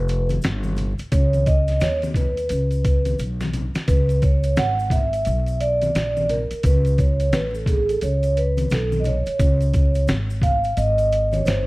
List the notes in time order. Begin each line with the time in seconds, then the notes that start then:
Already playing: F1 B4
0.08 closed hi-hat, shaker
0.29 closed hi-hat, high conga, shaker
0.42 G1, snare, closed hi-hat, shaker
0.63 high conga, shaker
0.77 closed hi-hat, low conga, shaker
0.98 muted upright bass stroke, closed hi-hat, shaker
1.12 C#2 C#5, kick, closed hi-hat, shaker
1.33 closed hi-hat, high conga, shaker
1.46 D#5, kick, closed hi-hat, shaker
1.68 snare, closed hi-hat, shaker
1.80 D#2 C#5, snare, closed hi-hat, high conga, shaker
2.02 closed hi-hat, high conga, shaker
2.14 B4, kick, closed hi-hat, low conga, shaker
2.37 closed hi-hat, shaker
2.49 C#2, closed hi-hat, shaker
2.71 closed hi-hat, shaker
2.85 kick, closed hi-hat, shaker
3.05 closed hi-hat, high conga, shaker
3.19 B1, closed hi-hat, shaker
3.41 snare, high conga, shaker
3.53 closed hi-hat, low conga, shaker
3.75 muted upright bass stroke, snare, closed hi-hat, shaker
3.88 C#2 B4, kick, closed hi-hat, shaker
4.09 closed hi-hat, shaker
4.22 C#5, kick, closed hi-hat, shaker
4.43 closed hi-hat, shaker
4.57 G#1 F#5, snare, closed hi-hat, high conga, shaker
4.79 shaker
4.90 E5, kick, closed hi-hat, low conga, shaker
5.13 closed hi-hat, shaker
5.25 B1, closed hi-hat, shaker
5.46 closed hi-hat, shaker
5.60 D5, closed hi-hat, shaker
5.82 closed hi-hat, high conga, shaker
5.95 A#1, snare, closed hi-hat, shaker
6.17 high conga, shaker
6.29 A#4, closed hi-hat, low conga, shaker
6.51 muted upright bass stroke, closed hi-hat, shaker
6.63 C#2 B4, kick, closed hi-hat, shaker
6.85 closed hi-hat, shaker
6.98 C#5, kick, closed hi-hat, shaker
7.20 closed hi-hat, shaker
7.33 A1 B4, snare, closed hi-hat, high conga, shaker
7.54 A4, shaker
7.66 G#4, kick, closed hi-hat, low conga, shaker
7.89 A4, closed hi-hat, shaker
8.01 C#2 C#5, closed hi-hat, shaker
8.23 closed hi-hat, shaker
8.37 B4, closed hi-hat, shaker
8.57 closed hi-hat, high conga, shaker
8.70 B1 A4, snare, closed hi-hat, shaker
8.92 high conga, shaker
9.00 D#5
9.04 C#5, closed hi-hat, low conga, shaker
9.26 muted upright bass stroke, closed hi-hat, shaker
9.39 C#2, kick, closed hi-hat, shaker
9.61 closed hi-hat, shaker
9.73 kick, closed hi-hat, shaker
9.95 closed hi-hat, shaker
10.08 G#1, snare, closed hi-hat, high conga, shaker
10.30 shaker
10.42 F5, kick, closed hi-hat, low conga, shaker
10.64 closed hi-hat, shaker
10.77 G#1 D#5, closed hi-hat, shaker
10.98 closed hi-hat, shaker
11.12 closed hi-hat, shaker
11.32 C#5, closed hi-hat, high conga, shaker
11.45 G1 C5, snare, closed hi-hat, shaker